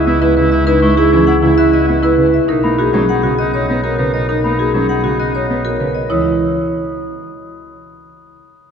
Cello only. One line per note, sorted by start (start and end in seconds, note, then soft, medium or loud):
0.07 0.18 B3 medium
0.37 0.48 C#3 medium
0.82 0.93 G#3 medium
1.12 1.24 E3 medium
1.43 1.54 C#3 medium
1.88 1.99 B3 medium
2.18 2.29 C#3 medium
2.63 2.75 A#3 medium
2.93 3.04 F#3 medium
3.23 3.35 C#3 medium
3.69 3.80 B3 medium
3.99 4.10 C#3 medium
4.44 4.55 A#3 medium
4.74 4.85 F#3 medium
5.04 5.16 C#3 soft
5.50 5.61 B3 medium
5.80 5.91 C#3 medium
6.10 6.24 E3 medium